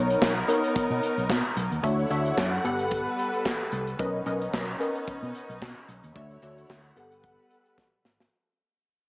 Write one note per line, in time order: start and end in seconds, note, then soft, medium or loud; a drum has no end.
0.00 0.15 B1 medium
0.00 0.33 B3 medium
0.00 1.81 B3 medium
0.00 0.33 D#4 medium
0.00 1.81 D#4 medium
0.00 0.33 A#4 medium
0.00 1.81 A#4 medium
0.00 0.33 C#5 loud
0.10 closed hi-hat medium
0.22 0.42 B1 loud
0.22 kick loud
0.22 snare loud
0.22 clap medium
0.37 closed hi-hat soft
0.48 1.23 B3 loud
0.48 1.24 D#4 medium
0.48 1.24 A#4 medium
0.48 1.24 C#5 loud
0.48 closed hi-hat medium
0.64 closed hi-hat medium
0.76 muted fingered electric bass stroke soft
0.76 kick loud
0.76 closed hi-hat medium
0.90 0.99 B2 loud
0.90 closed hi-hat soft
1.03 closed hi-hat medium
1.18 1.27 B1 medium
1.18 closed hi-hat soft
1.30 1.41 B2 loud
1.30 kick loud
1.30 snare loud
1.30 clap medium
1.45 closed hi-hat soft
1.57 1.68 B1 loud
1.57 closed hi-hat medium
1.72 1.80 D#2 medium
1.72 closed hi-hat soft
1.83 2.04 D2 loud
1.83 2.64 D3 medium
1.83 2.03 D4 medium
1.83 2.64 E4 medium
1.83 2.03 F#4 medium
1.83 2.03 C#5 medium
1.83 2.64 C#5 medium
1.83 2.03 E5 loud
1.83 3.98 F#5 medium
1.83 kick loud
1.83 closed hi-hat loud
1.99 closed hi-hat soft
2.10 2.31 D2 medium
2.10 2.49 D4 medium
2.10 2.49 F#4 medium
2.10 2.49 C#5 medium
2.10 2.49 E5 loud
2.10 closed hi-hat medium
2.26 closed hi-hat medium
2.37 2.58 F#2 loud
2.37 kick loud
2.37 snare loud
2.37 clap medium
2.53 closed hi-hat soft
2.64 3.05 G1 medium
2.64 3.98 G3 medium
2.64 3.51 B3 loud
2.64 3.52 G4 medium
2.64 3.98 A4 medium
2.64 3.52 A4 medium
2.64 3.98 B4 medium
2.64 3.52 F#5 loud
2.64 closed hi-hat medium
2.79 closed hi-hat medium
2.91 kick loud
2.91 closed hi-hat loud
3.06 closed hi-hat soft
3.19 closed hi-hat medium
3.34 closed hi-hat medium
3.45 kick loud
3.45 snare loud
3.45 clap loud
3.60 closed hi-hat soft
3.72 3.93 C2 loud
3.72 closed hi-hat medium
3.87 closed hi-hat medium
3.99 4.20 B1 loud
3.99 6.14 B3 medium
3.99 4.19 C#4 medium
3.99 6.14 C#4 medium
3.99 6.14 D#4 medium
3.99 4.19 A#4 medium
3.99 4.19 B4 medium
3.99 4.19 D#5 loud
3.99 kick loud
3.99 closed hi-hat loud
4.26 4.47 B1 loud
4.26 4.65 C#4 medium
4.26 4.65 A#4 medium
4.26 4.65 B4 medium
4.26 4.65 D#5 loud
4.26 closed hi-hat medium
4.42 closed hi-hat medium
4.53 4.74 B1 loud
4.53 kick loud
4.53 snare loud
4.53 clap medium
4.69 closed hi-hat soft
4.80 5.56 C#4 medium
4.80 5.56 A#4 medium
4.80 5.56 B4 medium
4.80 5.56 D#5 medium
4.80 closed hi-hat medium
4.95 closed hi-hat medium
5.07 muted fingered electric bass stroke medium
5.07 kick loud
5.07 closed hi-hat medium
5.23 5.32 B2 medium
5.23 closed hi-hat soft
5.35 closed hi-hat medium
5.49 5.59 B1 medium
5.49 closed hi-hat medium
5.62 5.73 B2 loud
5.62 kick loud
5.62 snare loud
5.62 clap loud
5.77 closed hi-hat soft
5.89 6.00 B1 medium
5.89 closed hi-hat medium
6.04 6.13 D#2 medium
6.04 closed hi-hat medium
6.15 6.36 D2 loud
6.15 6.96 D3 medium
6.15 6.35 D4 medium
6.15 6.96 E4 medium
6.15 6.35 F#4 medium
6.15 6.96 C#5 medium
6.15 6.36 C#5 medium
6.15 6.36 E5 loud
6.15 8.30 F#5 medium
6.15 kick loud
6.15 closed hi-hat medium
6.31 closed hi-hat soft
6.42 6.63 D2 loud
6.42 6.81 D4 medium
6.42 6.81 F#4 medium
6.42 6.82 C#5 medium
6.42 6.82 E5 loud
6.42 closed hi-hat medium
6.58 closed hi-hat medium
6.70 6.90 D2 medium
6.70 kick loud
6.70 snare loud
6.70 clap medium
6.85 closed hi-hat soft
6.96 7.37 G1 medium
6.96 8.30 G3 medium
6.96 7.84 B3 loud
6.96 7.84 G4 medium
6.96 8.30 A4 medium
6.96 7.84 A4 medium
6.96 8.30 B4 medium
6.96 7.84 F#5 loud
6.96 closed hi-hat medium
7.12 closed hi-hat medium
7.24 kick loud
7.24 closed hi-hat medium
7.51 closed hi-hat medium
7.66 closed hi-hat medium
7.78 kick loud
7.78 snare medium
8.05 8.25 G#1 medium
8.05 snare medium
8.20 snare loud